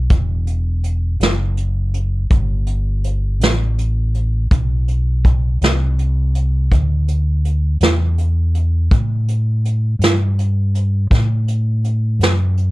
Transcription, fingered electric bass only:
0.10 E1
1.20 F#1
2.30 G1
3.40 A1
4.51 B1
5.61 C2
6.71 D2
7.81 E2
8.91 A2
9.99 G2
11.10 A2
12.19 F#2

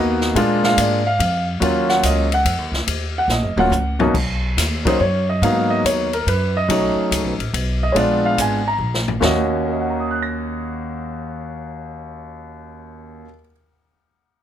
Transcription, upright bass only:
Already playing: D#2
0.35 A#2
0.77 G#2
1.19 F2
1.61 D#2
2.03 C#2
2.45 F2
2.58 D#2
2.72 C#2
2.87 D#2
3.28 A#1
3.41 F#1
3.56 D#1
3.70 C#2
4.15 B1
4.57 D#2
5.00 F#2
5.42 G#2
5.84 D#2
6.27 F#2
6.69 B1
6.95 muted upright bass stroke
7.11 C#2
7.24 B1
7.39 A1
7.54 B1
7.95 A#1
8.38 G#1
8.78 A#1
9.21 D#2

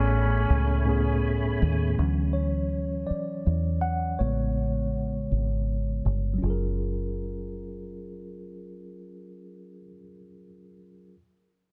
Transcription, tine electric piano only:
Already playing: A2 A3 B3 C#4 G#4
0.85 A2 A3 B3 C#4
0.89 G#4
1.98 E3 F#3 C#4
2.33 C#5
3.07 D5
3.81 F#5
4.19 C#3 G#3 B3 C#5
6.34 F#3
6.38 C#4
6.42 F4 G#4
6.50 A#4

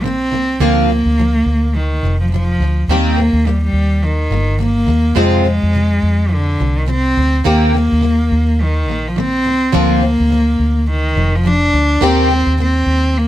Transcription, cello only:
0.03 C4
0.60 A#3
1.76 D#3
2.21 F3
2.32 F3
2.89 G3
3.07 A#3
3.47 G3
3.64 G3
4.04 D#3
4.62 A#3
5.19 G#3
6.33 D3
6.78 D#3
6.91 C4
7.48 A#3
8.62 D#3
9.08 F3
9.19 C4
9.75 A#3
10.91 D#3
11.36 F3
11.47 D4
12.04 C4
12.61 C4
13.18 A#3

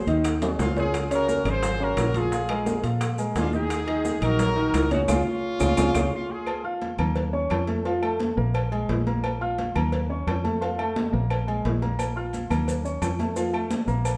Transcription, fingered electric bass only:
0.07 D#2
0.59 C#2
1.45 G#1
1.97 A#1
2.84 A#2
3.35 D#2
4.22 A#1
4.74 C#2
5.09 C#2
5.61 C#2
5.78 C#2
5.95 C#2
6.99 D#2
7.51 F2
8.37 A#1
8.89 A#1
9.76 D#2
10.27 F2
11.13 A#1
11.65 A#1
12.50 D#2
13.02 F2
13.88 A#1

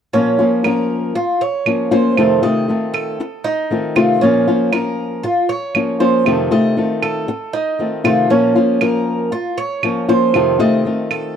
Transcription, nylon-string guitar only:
0.13 A#2 F3 A#3 C#4 F4
0.39 F3 A#3 C#4 F4
0.64 F3 A#3 C#4 F4
1.15 muted nylon-string guitar stroke
1.66 F3 A#3 C#4 F4
1.91 F3 A#3 C#4 F4
2.17 F2 C3 D#3 A3 C4 F4
2.42 C3 D#3 A3 C4 F4
2.68 D#3 A3 C4 F4
3.20 muted nylon-string guitar stroke
3.71 D#3 A3 C4 F4
3.96 C3 D#3 A3 C4 F4
4.22 A#2 F3 A#3 C#4 F4
4.48 F3 A#3 C#4 F4
4.73 F3 A#3 C#4 F4
5.24 muted nylon-string guitar stroke
5.75 F3 A#3 C#4 F4
6.00 F3 A#3 C#4 F4
6.26 F2 C3 D#3 A3 C4 F4
6.51 C3 D#3 A3 C4 F4
6.77 D#3 A3 C4 F4
7.28 muted nylon-string guitar stroke
7.79 D#3 A3 C4 F4
8.04 C3 D#3 A3 C4 F4
8.30 A#2 F3 A#3 C#4 F4
8.55 F3 A#3 C#4 F4
8.81 F3 A#3 C#4 F4
9.32 muted nylon-string guitar stroke
9.83 F3 A#3 C#4 F4
10.08 F3 A#3 C#4 F4
10.34 F2 C3 D#3 A3 C4 F4
10.59 C3 D#3 A3 C4 F4
10.85 D#3 A3 C4 F4

